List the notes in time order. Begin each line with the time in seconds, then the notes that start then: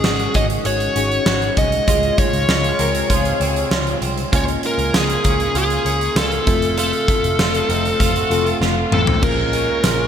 Already playing: D#3 G#3 C#4 D#4 F#4 G#4
0.04 G#1 F#4, snare
0.20 closed hi-hat
0.34 G#1 C#4 D#5, kick, closed hi-hat
0.50 closed hi-hat
0.65 G#1 F#4 C#5, closed hi-hat
0.80 closed hi-hat
0.96 G#1 C#4 D#4 F#4 G#4, closed hi-hat
1.11 closed hi-hat
1.26 G#1 F#4, snare
1.42 closed hi-hat
1.57 C2 C#4 D#5, kick, closed hi-hat
1.72 closed hi-hat
1.87 C#2 C3 G#3 F4 G#4, kick, closed hi-hat
2.03 closed hi-hat
2.18 G#3 C#5, kick, closed hi-hat
2.33 C#2, closed hi-hat
2.48 C#2 F4, snare
2.64 closed hi-hat
2.79 C#2 C4 A#4, closed hi-hat
2.95 closed hi-hat
3.10 C#2 F4 G#4, kick, closed hi-hat
3.25 closed hi-hat
3.40 C#2 C4, closed hi-hat
3.56 closed hi-hat
3.71 C#2 F4, snare
3.87 closed hi-hat
4.02 C2 C4, closed hi-hat
4.17 closed hi-hat
4.32 C#2 C#3 G#3 A#3 C#4 F4 C#5 G#5, kick, closed hi-hat
4.48 closed hi-hat
4.63 G#3 A#4, closed hi-hat
4.78 C#2, closed hi-hat
4.93 C#2 F4 G#4, snare, tambourine
5.10 closed hi-hat
5.24 C#2 C#4, kick, closed hi-hat
5.40 closed hi-hat
5.55 C#2 F4 G#4, closed hi-hat
5.70 closed hi-hat
5.85 C#2 C#4, closed hi-hat
6.01 closed hi-hat
6.16 C#2 F4 A4, snare, tambourine
6.32 closed hi-hat
6.46 F1 A3 C4 F4 A4 F5, kick, closed hi-hat
6.62 closed hi-hat
6.78 A3 F4 A4, closed hi-hat
6.93 closed hi-hat
7.08 A3, kick, closed hi-hat
7.23 F1, closed hi-hat
7.38 F1 F4, snare, tambourine
7.55 closed hi-hat
7.69 F1 C4 D#4, closed hi-hat
7.85 closed hi-hat
8.00 F1 F4, kick, closed hi-hat
8.16 F#4, closed hi-hat
8.30 F1 A3 C4 F4 A4, closed hi-hat
8.46 F4, closed hi-hat
8.61 F1 F4, snare
8.92 A1 C4 A4, mid tom
9.07 floor tom
9.22 A#1 G#3 A#3 C#4 F4 G#4 A#4 C#5 F5 A#5, kick, crash
9.53 C#4, closed hi-hat
9.84 A#1 F4, snare, closed hi-hat, tambourine